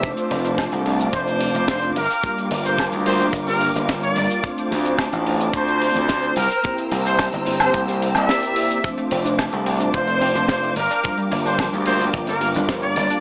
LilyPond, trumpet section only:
\new Staff \with { instrumentName = "Trumpet section" } { \time 4/4 \key g \dorian \tempo 4 = 109 r2 c''4. bes'8~ | bes'16 r8 c''16 r8 c''16 r8 bes'16 r8. d''8. | r2 c''4. bes'8~ | bes'16 r8 c''16 r8. c''16 r8. e''4~ e''16 |
r2 c''4. bes'8~ | bes'16 r8 c''16 r8 c''16 r8 bes'16 r8. d''8. | }